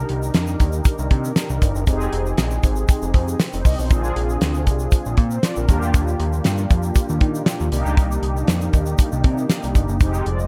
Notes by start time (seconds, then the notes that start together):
Already playing: D4 D#4 G4 A#4
0.09 C2, closed hi-hat
0.23 shaker
0.34 F2, snare, closed hi-hat, shaker
0.47 shaker
0.60 D#2, kick, closed hi-hat, shaker
0.73 shaker
0.85 kick, closed hi-hat, shaker
0.99 C2, shaker
1.11 C3, kick, closed hi-hat
1.25 shaker
1.36 snare, closed hi-hat, shaker
1.50 C2, shaker
1.62 G1, kick, closed hi-hat, shaker
1.75 F#1, shaker
1.87 F1 C4 D#4 G4 G#4, kick, closed hi-hat, shaker
2.01 shaker
2.13 F1, closed hi-hat
2.26 shaker
2.38 A#1, snare, closed hi-hat, shaker
2.51 shaker
2.63 G#1, kick, closed hi-hat, shaker
2.76 shaker
2.89 kick, closed hi-hat, shaker
3.02 F1, shaker
3.14 F2, kick, closed hi-hat
3.28 shaker
3.40 snare, closed hi-hat, shaker
3.53 F1 D#4 C5, closed hi-hat, shaker
3.65 C2 G4 D#5, kick, open hi-hat, shaker
3.78 B1 D#4 C5, shaker
3.90 A#1 C4 D4 F4 G#4, kick, closed hi-hat, shaker
4.04 shaker
4.16 A#1, closed hi-hat
4.30 shaker
4.41 D2, snare, closed hi-hat, shaker
4.54 shaker
4.67 C2, kick, closed hi-hat, shaker
4.79 shaker
4.92 kick, closed hi-hat, shaker
5.05 A#1, shaker
5.17 A#2, kick, closed hi-hat
5.31 C5, shaker
5.43 F4 D5, snare, closed hi-hat, shaker
5.56 A#1 D4 A#4, shaker
5.68 D#2 A#3 D4 F4 G4, kick, closed hi-hat, shaker
5.82 E2, shaker
5.94 D#2, kick, closed hi-hat, shaker
6.08 shaker
6.20 D#2, closed hi-hat
6.33 shaker
6.44 G2, snare, closed hi-hat, shaker
6.58 shaker
6.70 F2, kick, closed hi-hat, shaker
6.83 shaker
6.95 kick, closed hi-hat, shaker
7.09 D#2, shaker
7.21 D#3, kick, closed hi-hat
7.35 shaker
7.46 snare, closed hi-hat, shaker
7.60 D#2, shaker
7.72 C2 A#3 D4 D#4 G4, closed hi-hat, shaker
7.86 C#2, shaker
7.97 C2, kick, closed hi-hat, shaker
8.12 shaker
8.22 C2, closed hi-hat
8.37 shaker
8.47 F2, snare, closed hi-hat, shaker
8.61 shaker
8.73 D#2, kick, closed hi-hat, shaker
8.86 shaker
8.98 kick, closed hi-hat, shaker
9.12 C2, shaker
9.24 C3, kick, closed hi-hat
9.38 shaker
9.50 snare, closed hi-hat, shaker
9.63 C2, closed hi-hat, shaker
9.75 G1, kick, closed hi-hat, shaker
9.89 F#1, shaker
10.00 F1 G#3 C4 D#4 G4, kick, closed hi-hat, shaker
10.14 shaker
10.26 F1 F4 D5, closed hi-hat
10.39 G4 D#5, shaker